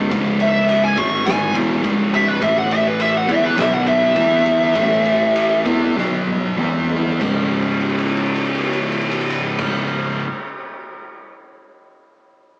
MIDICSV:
0, 0, Header, 1, 5, 480
1, 0, Start_track
1, 0, Key_signature, 4, "minor"
1, 0, Tempo, 576369
1, 96, Time_signature, 4, 2, 24, 8
1, 2976, Tempo, 595829
1, 4896, Tempo, 632911
1, 9933, End_track
2, 0, Start_track
2, 0, Title_t, "Lead electric guitar"
2, 0, Program_c, 0, 29
2, 345, Note_on_c, 0, 76, 90
2, 564, Note_off_c, 0, 76, 0
2, 574, Note_on_c, 0, 76, 81
2, 690, Note_off_c, 0, 76, 0
2, 698, Note_on_c, 0, 80, 94
2, 812, Note_off_c, 0, 80, 0
2, 817, Note_on_c, 0, 85, 84
2, 1047, Note_off_c, 0, 85, 0
2, 1049, Note_on_c, 0, 80, 99
2, 1283, Note_off_c, 0, 80, 0
2, 1790, Note_on_c, 0, 76, 118
2, 1897, Note_off_c, 0, 76, 0
2, 1900, Note_on_c, 0, 71, 89
2, 2012, Note_off_c, 0, 71, 0
2, 2021, Note_on_c, 0, 76, 91
2, 2133, Note_off_c, 0, 76, 0
2, 2150, Note_on_c, 0, 78, 80
2, 2258, Note_off_c, 0, 78, 0
2, 2269, Note_on_c, 0, 76, 97
2, 2377, Note_off_c, 0, 76, 0
2, 2390, Note_on_c, 0, 71, 95
2, 2498, Note_off_c, 0, 71, 0
2, 2509, Note_on_c, 0, 76, 92
2, 2618, Note_off_c, 0, 76, 0
2, 2640, Note_on_c, 0, 78, 87
2, 2744, Note_off_c, 0, 78, 0
2, 2757, Note_on_c, 0, 76, 96
2, 2863, Note_off_c, 0, 76, 0
2, 2863, Note_on_c, 0, 71, 88
2, 2976, Note_off_c, 0, 71, 0
2, 2997, Note_on_c, 0, 76, 85
2, 3104, Note_off_c, 0, 76, 0
2, 3104, Note_on_c, 0, 78, 83
2, 3213, Note_off_c, 0, 78, 0
2, 3221, Note_on_c, 0, 76, 95
2, 4623, Note_off_c, 0, 76, 0
2, 9933, End_track
3, 0, Start_track
3, 0, Title_t, "Distorted electric guitar"
3, 0, Program_c, 1, 30
3, 0, Note_on_c, 1, 44, 93
3, 0, Note_on_c, 1, 49, 101
3, 85, Note_off_c, 1, 44, 0
3, 91, Note_off_c, 1, 49, 0
3, 91, Note_on_c, 1, 37, 107
3, 95, Note_on_c, 1, 44, 101
3, 102, Note_on_c, 1, 49, 100
3, 801, Note_off_c, 1, 44, 0
3, 804, Note_off_c, 1, 37, 0
3, 810, Note_off_c, 1, 49, 0
3, 811, Note_on_c, 1, 44, 93
3, 817, Note_on_c, 1, 51, 100
3, 823, Note_on_c, 1, 56, 99
3, 1284, Note_off_c, 1, 44, 0
3, 1287, Note_off_c, 1, 51, 0
3, 1288, Note_on_c, 1, 40, 81
3, 1290, Note_off_c, 1, 56, 0
3, 1295, Note_on_c, 1, 47, 94
3, 1296, Note_on_c, 1, 52, 95
3, 1520, Note_off_c, 1, 40, 0
3, 1523, Note_on_c, 1, 37, 99
3, 1525, Note_off_c, 1, 47, 0
3, 1527, Note_off_c, 1, 52, 0
3, 1529, Note_on_c, 1, 44, 89
3, 1533, Note_on_c, 1, 49, 94
3, 2000, Note_off_c, 1, 37, 0
3, 2003, Note_off_c, 1, 44, 0
3, 2005, Note_off_c, 1, 49, 0
3, 2005, Note_on_c, 1, 45, 99
3, 2008, Note_on_c, 1, 52, 106
3, 2015, Note_on_c, 1, 57, 101
3, 2715, Note_off_c, 1, 52, 0
3, 2723, Note_off_c, 1, 45, 0
3, 2723, Note_off_c, 1, 57, 0
3, 2725, Note_on_c, 1, 52, 89
3, 2726, Note_on_c, 1, 59, 89
3, 2734, Note_on_c, 1, 64, 107
3, 2964, Note_off_c, 1, 52, 0
3, 2965, Note_off_c, 1, 59, 0
3, 2969, Note_off_c, 1, 64, 0
3, 2972, Note_on_c, 1, 47, 95
3, 2977, Note_on_c, 1, 54, 108
3, 2985, Note_on_c, 1, 59, 104
3, 3438, Note_off_c, 1, 47, 0
3, 3441, Note_off_c, 1, 54, 0
3, 3441, Note_off_c, 1, 59, 0
3, 3444, Note_on_c, 1, 52, 86
3, 3450, Note_on_c, 1, 59, 91
3, 3456, Note_on_c, 1, 64, 108
3, 3915, Note_off_c, 1, 52, 0
3, 3918, Note_off_c, 1, 59, 0
3, 3921, Note_off_c, 1, 64, 0
3, 3926, Note_on_c, 1, 45, 91
3, 3930, Note_on_c, 1, 52, 98
3, 3938, Note_on_c, 1, 57, 108
3, 4640, Note_off_c, 1, 52, 0
3, 4644, Note_off_c, 1, 45, 0
3, 4650, Note_off_c, 1, 57, 0
3, 4650, Note_on_c, 1, 52, 103
3, 4654, Note_on_c, 1, 59, 101
3, 4658, Note_on_c, 1, 64, 97
3, 4888, Note_off_c, 1, 52, 0
3, 4890, Note_off_c, 1, 59, 0
3, 4892, Note_off_c, 1, 64, 0
3, 4893, Note_on_c, 1, 47, 93
3, 4895, Note_on_c, 1, 54, 95
3, 4904, Note_on_c, 1, 59, 104
3, 5356, Note_off_c, 1, 47, 0
3, 5356, Note_off_c, 1, 54, 0
3, 5361, Note_off_c, 1, 59, 0
3, 5367, Note_on_c, 1, 52, 77
3, 5368, Note_on_c, 1, 59, 88
3, 5373, Note_on_c, 1, 64, 103
3, 5835, Note_off_c, 1, 52, 0
3, 5835, Note_off_c, 1, 59, 0
3, 5835, Note_on_c, 1, 37, 91
3, 5838, Note_off_c, 1, 64, 0
3, 5851, Note_on_c, 1, 44, 99
3, 5865, Note_on_c, 1, 49, 102
3, 8133, Note_off_c, 1, 37, 0
3, 8133, Note_off_c, 1, 44, 0
3, 8133, Note_off_c, 1, 49, 0
3, 9933, End_track
4, 0, Start_track
4, 0, Title_t, "Picked electric bass"
4, 0, Program_c, 2, 34
4, 94, Note_on_c, 2, 25, 89
4, 779, Note_off_c, 2, 25, 0
4, 811, Note_on_c, 2, 32, 91
4, 1258, Note_off_c, 2, 32, 0
4, 1293, Note_on_c, 2, 28, 91
4, 1515, Note_off_c, 2, 28, 0
4, 1531, Note_on_c, 2, 25, 96
4, 1978, Note_off_c, 2, 25, 0
4, 2013, Note_on_c, 2, 33, 96
4, 2701, Note_off_c, 2, 33, 0
4, 2737, Note_on_c, 2, 40, 95
4, 2961, Note_off_c, 2, 40, 0
4, 2970, Note_on_c, 2, 35, 88
4, 3412, Note_off_c, 2, 35, 0
4, 3447, Note_on_c, 2, 40, 102
4, 3891, Note_off_c, 2, 40, 0
4, 3923, Note_on_c, 2, 33, 88
4, 4617, Note_off_c, 2, 33, 0
4, 4650, Note_on_c, 2, 40, 94
4, 4878, Note_off_c, 2, 40, 0
4, 4890, Note_on_c, 2, 35, 90
4, 5331, Note_off_c, 2, 35, 0
4, 5356, Note_on_c, 2, 40, 98
4, 5806, Note_off_c, 2, 40, 0
4, 5844, Note_on_c, 2, 25, 91
4, 7714, Note_off_c, 2, 25, 0
4, 9933, End_track
5, 0, Start_track
5, 0, Title_t, "Drums"
5, 96, Note_on_c, 9, 36, 109
5, 96, Note_on_c, 9, 51, 89
5, 179, Note_off_c, 9, 36, 0
5, 179, Note_off_c, 9, 51, 0
5, 333, Note_on_c, 9, 51, 75
5, 416, Note_off_c, 9, 51, 0
5, 574, Note_on_c, 9, 51, 97
5, 657, Note_off_c, 9, 51, 0
5, 813, Note_on_c, 9, 51, 64
5, 814, Note_on_c, 9, 36, 108
5, 896, Note_off_c, 9, 51, 0
5, 897, Note_off_c, 9, 36, 0
5, 1052, Note_on_c, 9, 51, 100
5, 1063, Note_on_c, 9, 38, 124
5, 1136, Note_off_c, 9, 51, 0
5, 1146, Note_off_c, 9, 38, 0
5, 1294, Note_on_c, 9, 36, 107
5, 1296, Note_on_c, 9, 51, 78
5, 1378, Note_off_c, 9, 36, 0
5, 1379, Note_off_c, 9, 51, 0
5, 1534, Note_on_c, 9, 36, 98
5, 1535, Note_on_c, 9, 51, 93
5, 1617, Note_off_c, 9, 36, 0
5, 1618, Note_off_c, 9, 51, 0
5, 1779, Note_on_c, 9, 51, 75
5, 1790, Note_on_c, 9, 38, 32
5, 1863, Note_off_c, 9, 51, 0
5, 1873, Note_off_c, 9, 38, 0
5, 2015, Note_on_c, 9, 36, 112
5, 2017, Note_on_c, 9, 51, 100
5, 2098, Note_off_c, 9, 36, 0
5, 2100, Note_off_c, 9, 51, 0
5, 2257, Note_on_c, 9, 51, 78
5, 2340, Note_off_c, 9, 51, 0
5, 2495, Note_on_c, 9, 51, 106
5, 2579, Note_off_c, 9, 51, 0
5, 2737, Note_on_c, 9, 36, 100
5, 2741, Note_on_c, 9, 51, 69
5, 2820, Note_off_c, 9, 36, 0
5, 2824, Note_off_c, 9, 51, 0
5, 2978, Note_on_c, 9, 51, 99
5, 2989, Note_on_c, 9, 38, 112
5, 3059, Note_off_c, 9, 51, 0
5, 3069, Note_off_c, 9, 38, 0
5, 3212, Note_on_c, 9, 51, 73
5, 3292, Note_off_c, 9, 51, 0
5, 3446, Note_on_c, 9, 51, 89
5, 3448, Note_on_c, 9, 36, 98
5, 3526, Note_off_c, 9, 51, 0
5, 3529, Note_off_c, 9, 36, 0
5, 3689, Note_on_c, 9, 51, 61
5, 3700, Note_on_c, 9, 38, 34
5, 3770, Note_off_c, 9, 51, 0
5, 3780, Note_off_c, 9, 38, 0
5, 3927, Note_on_c, 9, 36, 104
5, 3927, Note_on_c, 9, 51, 91
5, 4007, Note_off_c, 9, 51, 0
5, 4008, Note_off_c, 9, 36, 0
5, 4169, Note_on_c, 9, 51, 63
5, 4249, Note_off_c, 9, 51, 0
5, 4413, Note_on_c, 9, 51, 98
5, 4493, Note_off_c, 9, 51, 0
5, 4654, Note_on_c, 9, 36, 101
5, 4656, Note_on_c, 9, 51, 69
5, 4735, Note_off_c, 9, 36, 0
5, 4737, Note_off_c, 9, 51, 0
5, 4911, Note_on_c, 9, 38, 69
5, 4987, Note_off_c, 9, 38, 0
5, 5136, Note_on_c, 9, 48, 72
5, 5212, Note_off_c, 9, 48, 0
5, 5369, Note_on_c, 9, 47, 79
5, 5445, Note_off_c, 9, 47, 0
5, 5490, Note_on_c, 9, 45, 76
5, 5566, Note_off_c, 9, 45, 0
5, 5612, Note_on_c, 9, 43, 95
5, 5688, Note_off_c, 9, 43, 0
5, 5731, Note_on_c, 9, 43, 93
5, 5807, Note_off_c, 9, 43, 0
5, 5847, Note_on_c, 9, 36, 106
5, 5848, Note_on_c, 9, 49, 95
5, 5923, Note_off_c, 9, 36, 0
5, 5924, Note_off_c, 9, 49, 0
5, 6090, Note_on_c, 9, 57, 47
5, 6160, Note_on_c, 9, 51, 51
5, 6166, Note_off_c, 9, 57, 0
5, 6229, Note_on_c, 9, 57, 55
5, 6235, Note_off_c, 9, 51, 0
5, 6300, Note_on_c, 9, 51, 54
5, 6305, Note_off_c, 9, 57, 0
5, 6368, Note_on_c, 9, 57, 59
5, 6375, Note_off_c, 9, 51, 0
5, 6433, Note_on_c, 9, 51, 59
5, 6444, Note_off_c, 9, 57, 0
5, 6506, Note_on_c, 9, 57, 65
5, 6509, Note_off_c, 9, 51, 0
5, 6574, Note_on_c, 9, 51, 58
5, 6581, Note_off_c, 9, 57, 0
5, 6641, Note_on_c, 9, 57, 61
5, 6649, Note_off_c, 9, 51, 0
5, 6716, Note_off_c, 9, 57, 0
5, 6717, Note_on_c, 9, 51, 66
5, 6790, Note_on_c, 9, 57, 65
5, 6793, Note_off_c, 9, 51, 0
5, 6861, Note_on_c, 9, 51, 74
5, 6866, Note_off_c, 9, 57, 0
5, 6928, Note_on_c, 9, 57, 74
5, 6937, Note_off_c, 9, 51, 0
5, 6999, Note_on_c, 9, 51, 75
5, 7003, Note_off_c, 9, 57, 0
5, 7067, Note_on_c, 9, 57, 77
5, 7075, Note_off_c, 9, 51, 0
5, 7142, Note_on_c, 9, 51, 76
5, 7143, Note_off_c, 9, 57, 0
5, 7213, Note_on_c, 9, 57, 85
5, 7217, Note_off_c, 9, 51, 0
5, 7288, Note_on_c, 9, 51, 84
5, 7289, Note_off_c, 9, 57, 0
5, 7361, Note_on_c, 9, 57, 92
5, 7364, Note_off_c, 9, 51, 0
5, 7433, Note_on_c, 9, 51, 97
5, 7437, Note_off_c, 9, 57, 0
5, 7508, Note_off_c, 9, 51, 0
5, 7648, Note_on_c, 9, 49, 103
5, 7650, Note_on_c, 9, 36, 105
5, 7724, Note_off_c, 9, 49, 0
5, 7725, Note_off_c, 9, 36, 0
5, 9933, End_track
0, 0, End_of_file